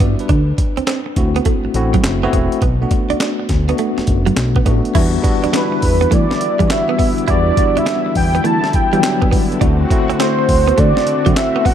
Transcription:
Already playing: G3 B3 D4 E4 F#4 G4 E5
0.00 G1 B3 F#4 D5, kick, closed hi-hat
0.19 D4 B4, closed hi-hat
0.29 D2 D4, kick, closed hi-hat
0.58 muted clean electric guitar stroke, kick, closed hi-hat
0.77 D2 C4, closed hi-hat
0.87 C4, snare, clap, closed hi-hat
1.06 muted clean electric guitar stroke
1.16 D2 A3 C4 E4 F#4, kick, closed hi-hat
1.36 B3, closed hi-hat
1.45 A3, kick, closed hi-hat
1.65 A1, muted clean electric guitar stroke
1.74 A1 A3 C4 E4 F#4, closed hi-hat
1.94 F#3, kick, closed hi-hat
2.03 F#1, muted clean electric guitar stroke, snare, clap, closed hi-hat
2.23 A3 B3 C4 E4 F#4
2.33 E1 B3, kick, closed hi-hat
2.52 closed hi-hat
2.62 B1 B3, kick, closed hi-hat
2.81 A3 B3 D4 F#4
2.91 muted clean electric guitar stroke, kick, closed hi-hat
3.10 D2 D4, closed hi-hat
3.20 D4, snare, clap, closed hi-hat
3.40 muted clean electric guitar stroke
3.49 D2, kick, snare, closed hi-hat
3.68 A3 B3 D4 F#4, closed hi-hat
3.78 A3, closed hi-hat
3.98 F#1, muted clean electric guitar stroke, snare
4.07 F#1, kick, closed hi-hat
4.26 F#3, closed hi-hat
4.36 B1, muted clean electric guitar stroke, snare, clap, closed hi-hat
4.56 B3, kick
4.65 A1 A3 B3 D4 F#4, kick, closed hi-hat
4.85 closed hi-hat
4.94 E2 D3 E3 G3 B3 D4 E4 F#4, kick, closed hi-hat, crash
5.23 G3 B3 D4 F#4, muted clean electric guitar stroke, kick, closed hi-hat
5.44 E2 D4, closed hi-hat
5.53 D4 B4, snare, clap, closed hi-hat
5.72 muted clean electric guitar stroke
5.82 E2, kick, open hi-hat
6.01 B3, closed hi-hat
6.11 E3 A3 D5, kick, closed hi-hat
6.31 muted clean electric guitar stroke, snare
6.41 E3, closed hi-hat
6.59 E3 G3 B3 D4 E4, kick, closed hi-hat
6.67 F#4 E5, muted clean electric guitar stroke, snare, clap, closed hi-hat
6.89 B3
6.99 B3, kick, open hi-hat
7.18 closed hi-hat
7.28 E2 G3 B3 D4 E4 F#4 D5, kick, closed hi-hat
7.57 G3 B3 D4 F#4, muted clean electric guitar stroke, kick, closed hi-hat
7.77 E2 D4 E5, closed hi-hat
7.86 D4, snare, clap, closed hi-hat
8.06 muted clean electric guitar stroke
8.15 E2 G5, kick, open hi-hat
8.35 B3, closed hi-hat
8.44 E3 A3 A5, closed hi-hat
8.64 muted clean electric guitar stroke, snare
8.73 E3 G5, kick, closed hi-hat
8.93 E3 F#3 G3 B3 D4, closed hi-hat
9.02 muted clean electric guitar stroke, snare, clap, closed hi-hat
9.22 B3, kick
9.31 B3, kick, open hi-hat
9.52 closed hi-hat
9.61 D2 A3 C4 D4 E4 F#4, kick, closed hi-hat
9.90 A3 C4 E4 F#4, muted clean electric guitar stroke, kick, closed hi-hat
10.10 D2 C4, closed hi-hat
10.20 C4 C5, snare, clap, closed hi-hat
10.39 muted clean electric guitar stroke
10.49 D2, kick, open hi-hat
10.68 B3, closed hi-hat
10.78 D3 A3 D5, kick, closed hi-hat
10.97 muted clean electric guitar stroke, snare
11.07 D3, closed hi-hat
11.26 D3 F#3 A3 C4 E4 F#4, kick, closed hi-hat
11.36 E5, muted clean electric guitar stroke, snare, clap, closed hi-hat
11.56 B3
11.65 B3 F#5, kick, open hi-hat

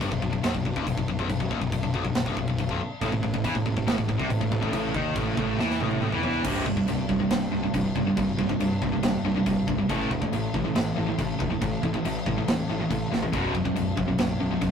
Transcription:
0.01 G1 G2, kick, crash
0.11 B0 B1, kick
0.22 B0 B1, kick
0.32 B0 B1, kick
0.42 B0 B1, snare, crash
0.54 B0 B1, kick
0.65 B0 B1, kick
0.76 D#1 D#2, kick
0.87 B0 B1, kick, crash
0.97 B0 B1, kick
1.08 B0 B1, kick
1.19 B0 B1, kick
1.30 B0 B1, kick, crash
1.40 B0 B1, kick
1.51 D#1 D#2, kick
1.61 B0 B1, kick
1.72 B0 B1, kick, crash
1.83 B0 B1, kick
1.94 B0 B1, kick
2.05 B0 B1, kick
2.14 B0 B1, snare, crash
2.26 C1 C2, kick
2.37 B0 B1, kick
2.48 B0 B1, kick
2.58 B0 B1, kick, crash
2.69 B0 B1, kick
3.01 A1 A2, kick, crash
3.12 A1 A2, kick
3.23 A1 A2, kick
3.34 A1 A2, kick
3.44 E2 E3, kick, crash
3.55 A1 A2, kick
3.66 A1 A2, kick
3.76 A1 A2, kick
3.87 A1 A2, snare, crash
3.98 A1 A2, kick
4.08 A1 A2, kick
4.19 C2 C3, kick
4.30 A1 A2, kick, crash
4.41 A1 A2, kick
4.52 A1 A2, kick
4.62 A1 A2, kick
4.73 A1 A2, kick, crash
4.95 D#2 D#3, kick
5.15 A1 A2, kick, crash
5.37 A1 A2, kick
5.59 E2 E3, snare
5.70 snare
5.80 A1 A2, high tom
5.91 high tom
6.02 A1 A2, mid tom
6.12 E2 E3, mid tom
6.23 E2 E3, floor tom
6.34 floor tom
6.44 C1 C2 G2 C3, kick, crash
6.66 G1 C2 G2, kick
6.77 C2 G2, kick
6.88 C1 C2 G2, crash
7.09 C1 C2 G2, kick
7.20 C2 G2
7.30 C1 C2 G2, snare, crash
7.52 C1 C2 G2
7.63 C2 G2
7.74 C1 C2 G2, kick, crash
7.96 G1 C2 G2, kick
8.07 C2 G2
8.17 C1 C2 G2, kick, crash
8.39 C1 C2 G2, kick
8.49 C2 G2, kick
8.60 C1 C2 G2, crash
8.82 C1 C2 G2, kick
8.92 C2 G2
9.03 E1 C2 G2, snare, crash
9.24 C1 C2 G2
9.36 C2 G2
9.46 C1 C2 G2, kick, crash
9.67 C1 C2 G2, kick
9.78 C2 G2
9.89 A1 A2 E3 A3, kick, crash
10.11 E1 A2 E3, kick
10.21 A2 E3, kick
10.32 A1 A2 E3, crash
10.54 A1 A2 E3, kick
10.64 A2 E3
10.75 A1 A2 E3, snare, crash
10.96 A1 A2 E3
11.06 A2 E3
11.18 A1 A2 E3, kick, crash
11.39 E1 A2 E3, kick
11.50 A2 E3
11.61 A1 A2 E3, kick, crash
11.83 A1 A2 E3, kick
11.94 A2 E3, kick
12.05 A1 A2 E3, crash
12.26 A1 A2 E3, kick
12.37 A2 E3
12.48 D#1 A2 E3, snare, crash
12.69 A1 A2 E3
12.80 A2 E3
12.90 A1 A2 E3, kick, crash
13.11 A1 A2 E3, snare
13.23 A2 E3, floor tom
13.32 B0 B1 F#2 B2, kick, crash
13.55 F#1 B1 F#2, kick
13.65 B1 F#2, kick
13.76 B0 B1 F#2, crash
13.97 B0 B1 F#2, kick
14.08 B1 F#2
14.18 B0 B1 F#2, snare, crash
14.40 B0 B1 F#2
14.51 B1 F#2
14.61 B0 B1 F#2, kick, crash

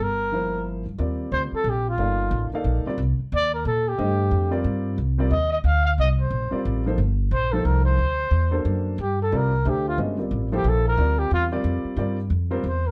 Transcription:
0.00 G1 A#4
0.32 F3 A#3 E4 A#4 C5
0.86 G2
0.98 D#2 G3 C4 F4 A#4 D5
1.32 D2 C5
1.52 A4, muted upright bass stroke
1.64 A#1
1.69 G4
1.89 F4
1.98 G1 A#3 D#4 A4 D5 F5
2.31 A1
2.52 A#3 D#4 A4 D5 F5, muted upright bass stroke
2.64 A#1
2.85 G3 C4 F4 A#4 D5, muted upright bass stroke
2.98 C2
3.19 muted upright bass stroke
3.32 D#2 D5
3.54 A#4
3.65 A#2 A4
3.88 G4
3.98 G2 D3 A3 G4 C5 D#5
4.31 F2
4.51 G3 C4 F4 A#4 D5
4.64 G2
4.98 C2
5.18 G3 C4 F4 A#4 D5
5.31 D#2 D#5
5.52 D#5
5.64 D2 F5
5.85 F5
5.98 C2 D#5
6.21 C5
6.30 A#1
6.51 G3 C4 F4 A#4 D5, muted upright bass stroke
6.65 A1
6.86 F3 A#3 D#4 A4 C5
6.98 G1
7.31 A#1 C5
7.52 F3 A#3 D#4 A4 C5
7.65 C2 A#4
7.85 C5
7.98 D2
8.31 E2
8.51 A#3 D4 F#4 A4 C5
8.65 F#2
8.98 G2 G4
9.22 A4
9.32 C2 G3 C4 F4 A#4 D5
9.37 A#4
9.65 D2 A3 D4 G4 C5 E5
9.88 F4
9.98 G1 G#3 C#4 F#4 B4 D#5
10.18 G3 C4 F4 A#4 D5
10.31 A1
10.52 F3 A#3 E4 G4 A4 C5
10.64 A#1
10.69 A4
10.88 A#4
10.98 D2 G3 C4 F4 A#4 D5
11.19 G4
11.31 E2 F4
11.52 G3 C4 F4 A#4 D5
11.64 F2
11.84 muted upright bass stroke
11.96 G2 G3 C4 F4 A#4 D5
12.30 F2
12.51 G3 C4 F4 A#4 C5
12.64 E2
12.68 C5
12.87 A#4

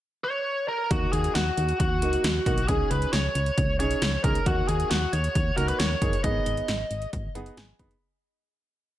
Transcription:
0.24 C#5
0.68 A#4
0.91 D#2 A#3 D#4 F#4, kick, closed hi-hat
1.13 D#2 G#4, closed hi-hat
1.24 closed hi-hat
1.35 D#2 F#4, snare, closed hi-hat
1.57 D#2, closed hi-hat
1.69 closed hi-hat
1.80 D#2 F#4, kick, closed hi-hat
2.02 C#2 A#3 D#4 F#4, closed hi-hat
2.13 closed hi-hat
2.24 D#2, snare, closed hi-hat
2.46 B1 A#3 D#4 F#4, kick, closed hi-hat
2.58 closed hi-hat
2.68 C#2 C#4 D#4 G#4, kick, closed hi-hat
2.90 C#2 B4, closed hi-hat
3.02 closed hi-hat
3.13 C#2 C#5, snare, closed hi-hat
3.35 C#2, closed hi-hat
3.46 closed hi-hat
3.58 C#2, kick, closed hi-hat
3.79 B1 C#4 D#4 G#4 C#5, closed hi-hat
3.91 closed hi-hat
4.02 C#2, snare, closed hi-hat
4.24 C#2 C#4 D#4 G#4 A#4, kick, closed hi-hat
4.35 closed hi-hat
4.46 D#2 A#3 D#4 F#4, kick, closed hi-hat
4.68 D#2 G#4, closed hi-hat
4.80 closed hi-hat
4.91 D#2 F#4, snare, closed hi-hat
5.13 D#2 C#5, closed hi-hat
5.24 closed hi-hat
5.35 D#2, kick, closed hi-hat
5.57 C#2 A#3 D#4 F#4 A#4, closed hi-hat
5.68 B4, closed hi-hat
5.80 D#2 C#5, snare, closed hi-hat
6.02 F#1 A#3 D#4 G#4, kick, closed hi-hat
6.13 closed hi-hat
6.24 G#1 B3 D#4 G#4 D#5, kick, closed hi-hat
6.46 G#1, closed hi-hat
6.57 closed hi-hat
6.68 G#1, snare, closed hi-hat
6.91 G#1, closed hi-hat
7.02 closed hi-hat
7.13 G#1, kick, closed hi-hat
7.35 F#1 B3 D#4 G#4 F#5, closed hi-hat
7.46 closed hi-hat
7.57 G#1 G#5, snare, closed hi-hat
7.79 F#1 B3 D#4 G#4 B5, kick, closed hi-hat
7.91 closed hi-hat

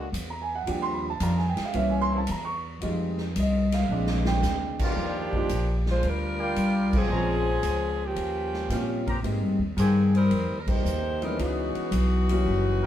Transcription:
Already playing: C#2
0.12 E2, hi-hat pedal, ride
0.30 A#5
0.42 G#5
0.55 F#5
0.66 D#2 F3 G3 D4 G5, ride
0.82 C6
0.93 B5
1.10 A5
1.19 F2 D#3 G3 D4 F4 A#5, hi-hat pedal, ride
1.37 G#5, snare
1.49 G5
1.57 muted upright bass stroke, snare, ride
1.65 F5
1.73 C2 E3 A#3 C#4 E5, ride
1.90 G#5
2.01 C6
2.10 C#3 A#3 C4 E4
2.18 A5
2.27 E2, hi-hat pedal, ride
2.31 A#5
2.45 C#6
2.80 F2 D#3 G3 G#3 C4 D#4 F4, ride
3.18 snare
3.36 C2 D#5, hi-hat pedal, ride
3.72 F5, snare, ride
3.89 A#1 G#3 C4 D4
4.07 snare
4.25 G5, snare
4.42 D2, snare, hi-hat pedal
4.79 D#3 F3 G3 A#3 D4 F4, kick, crash
4.84 D4 G4
4.96 D#2
5.33 G3 A#3 D4 D#4 F4, kick
5.49 A#1, hi-hat pedal, ride
5.86 G#3 F4, snare
5.90 D4 C5
6.03 D2, ride
6.07 G3 D4 F4 A#4
6.39 F4 D5 F5 G5
6.56 C2, hi-hat pedal, ride
6.93 F3 C4 C#4 G#4, kick, crash
7.09 A#1 G#3 A#3 C4 C#4 F4 G#4 C5 C#5 A#5
7.63 C#2, hi-hat pedal, ride
8.04 F3 A#3 C#4 G4
8.16 D#2, ride
8.54 snare
8.69 A#2 G3 A#3 C4 C#4 F4, snare, hi-hat pedal, ride
9.07 G4 A#4 C5 A#5, kick, ride
9.23 G#2 G3 G#3 A#3 C4 D#4, ride
9.40 G2
9.59 D#2
9.77 G2 D#3 A#3 C4 G4 G#4 A#4 C5 G#5, hi-hat pedal, ride
10.15 G3 C4 D#4 A#4, ride
10.31 F2, ride
10.48 D#2
10.59 A#4
10.66 C2 A#3 D#4 G4 C5, kick, crash
10.84 D#2, hi-hat pedal
11.22 E3 G3 G#3 B3 C4 C#4 D#4 A#4, ride
11.39 C#2 E3 B3 D#4 F#4, ride
11.75 muted upright bass stroke, ride
11.91 B1, hi-hat pedal, ride
12.29 E3 G3 A#3 C#4 F#4, ride
12.46 F#1
12.82 F#4 A#4 E5 G5

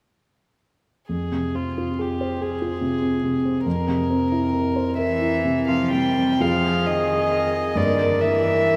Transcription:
1.08 F2 G#4
1.32 C3
1.55 C4 F4
1.78 F4
1.99 G4 G#4
2.21 C5
2.41 G#4
2.62 F4
2.81 C3
3.02 C4
3.23 C3
3.45 C4
3.66 F2 A#4
3.88 C3
4.10 C4
4.32 E4
4.54 A#4
4.76 C5
4.98 E3 A#4 E5
5.22 E4
5.45 C3
5.68 F3 C4 F5
5.91 C3 G3 G5
6.18 C4
6.40 F2 F3 C4 F4 G#4 F5
6.87 D#3 D#5
7.75 G2 D3 A#3 A#4 D5
8.21 E3 E5

